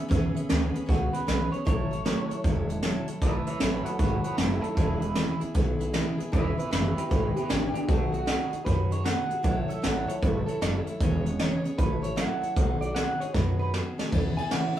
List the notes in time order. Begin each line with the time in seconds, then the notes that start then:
Already playing: E5
0.08 E2 C#3 E3 B3 C#4 G#4 B4, kick, closed hi-hat
0.35 B3 C#4 G#4 B4, closed hi-hat
0.49 D2 C#3 E3 B3 C#4 G#4 B4, snare, closed hi-hat
0.74 B3 C#4 G#4 B4, muted upright bass stroke, closed hi-hat
0.86 C#2 B3 C#4 F#4 G#4 B4, kick, closed hi-hat
1.13 B3 C#4 G#4 B4, muted upright bass stroke, closed hi-hat
1.27 B1 C#3 E3 B3 C#4 G#4 B4, snare, closed hi-hat
1.51 B3 C#4 G#4 B4 C#5, muted upright bass stroke, closed hi-hat
1.65 A1 F#3 A3 E4 A4 C#5, kick, closed hi-hat
1.91 E4 A4 C#5, closed hi-hat
2.05 F#3 A3 E4 A4 C#5, snare, closed hi-hat
2.30 E4 A4 C#5, muted upright bass stroke, closed hi-hat
2.44 E1 F#3 E4 A4 C#5, kick, closed hi-hat
2.69 E4 A4 C#5, closed hi-hat
2.83 F#3 A3 E4 A4 C#5, snare, closed hi-hat
3.08 E4 A4 C#5, muted upright bass stroke, closed hi-hat
3.22 A1 F#3 A3 E4 A4 B4 C#5 E5, kick, closed hi-hat
3.47 E4 A4 B4 C#5 E5, closed hi-hat
3.60 A1 F#3 A3 E4 A4 B4 C#5 E5, snare, closed hi-hat
3.85 E4 F#4 A4 B4 C#5, muted upright bass stroke, closed hi-hat
3.99 G#1 F#3 E4 F#4 A4 B4, kick, closed hi-hat
4.03 C#5
4.23 E4 F#4 A4 B4 C#5, muted upright bass stroke, closed hi-hat
4.37 F#1 F#3 A3 E4 A4, snare, closed hi-hat
4.41 C#5
4.61 E4 A4 C#5, muted upright bass stroke, closed hi-hat
4.65 E4
4.75 E1 C#3 E3 B3 E4 A4 B4, kick, closed hi-hat
4.79 G#4
5.00 E4 G#4 B4, closed hi-hat
5.05 B3
5.15 C#3 E3 B3 E4 G#4 B4, snare, closed hi-hat
5.40 B3 E4 G#4 B4, muted upright bass stroke, closed hi-hat
5.54 B1 B3 E4 G#4 B4, kick, closed hi-hat
5.79 B3 E4 G#4 B4, closed hi-hat
5.93 C#3 E3 B3 E4 G#4 B4, snare, closed hi-hat
6.18 B3 E4 G#4 B4, muted upright bass stroke, closed hi-hat
6.32 E1 C#3 E3 B3 E4 G#4 B4 E5, kick, closed hi-hat
6.58 B3 E4 G#4 B4 E5, muted upright bass stroke, closed hi-hat
6.71 F#1 C#3 E3 B3 E4 G#4 B4 E5, snare, closed hi-hat
6.97 B3 E4 G4 G#4 B4, muted upright bass stroke, closed hi-hat
7.10 G#1 B3 E4 G4 G#4 B4, kick, closed hi-hat
7.36 B3 E4 G4 G#4 B4, closed hi-hat
7.49 A1 C#3 E3 B3 D4 E4 G4 G#4 B4, snare, closed hi-hat
7.73 B3 D4 E4 G4 G#4 B4, muted upright bass stroke, closed hi-hat
7.88 B1 B3 D#4 F#4 G#4 A4, kick, closed hi-hat
8.12 D#4 F#4 G#4, closed hi-hat
8.26 B3 D#4 F#4 G#4, snare, closed hi-hat
8.51 D#4 F#4 G#4, muted upright bass stroke, closed hi-hat
8.65 F#2 B3 D#4 F#4 G#4 B4, kick, closed hi-hat
8.91 D#4 F#4 G#4 C#5, closed hi-hat
9.04 B3 D#4 F#4 G#4 F#5, snare, closed hi-hat
9.30 D#4 F#4 G#4, muted upright bass stroke, closed hi-hat
9.43 A1 F#3 A3 E4 A4 C#5, kick, closed hi-hat
9.68 E4 A4 C#5 E5, closed hi-hat
9.82 A1 F#3 A3 E4 A4 C#5 F#5, snare, closed hi-hat
10.07 E4 A4 C#5, muted upright bass stroke, closed hi-hat
10.21 G#1 F#3 E4 A4 B4 C#5, kick, closed hi-hat
10.46 A4 C#5, muted upright bass stroke, closed hi-hat
10.51 E4
10.61 F#1 F#3 A3 E4 A4 C#5, snare, closed hi-hat
10.86 E4 A4 C#5, muted upright bass stroke, closed hi-hat
11.00 E1 C#3 E3 B3 C#4 G#4 C#5, kick, closed hi-hat
11.26 B3 C#4 G#4 C#5, closed hi-hat
11.39 C#3 E3 B3 C#4 G#4 C#5, snare, closed hi-hat
11.64 B3 C#4 G#4 C#5, muted upright bass stroke, closed hi-hat
11.78 A1 F#3 E4 A4 B4 C#5, kick, closed hi-hat
12.02 E4 A4 C#5, closed hi-hat
12.16 F#3 A3 E4 A4 C#5 F#5, snare, closed hi-hat
12.42 E4 A4 C#5, muted upright bass stroke, closed hi-hat
12.56 B1 B3 D#4 F#4 G#4, kick, closed hi-hat
12.81 D#4 F#4 G#4 D5, closed hi-hat
12.94 B3 D#4 F#4 G#4 F#5, snare, closed hi-hat
13.20 D#4 G#4 C#5, muted upright bass stroke, closed hi-hat
13.25 F#4
13.33 F#2 B3 D#4 F#4 B4, kick, snare
13.38 G#4
13.59 D#4 F#4 G#4 B4
13.74 B3 D#4 F#4 G#4, snare
13.98 D#4 F#4 G#4, muted upright bass stroke, snare
14.11 E2 C#3 E3 B3 E4 G#4 B4, kick, ride
14.37 B3 E4 G#4 B4 G#5, muted upright bass stroke, ride
14.51 A2 C#3 E3 B3 E4 G#4 B4 F#5, snare, ride
14.76 G#4, ride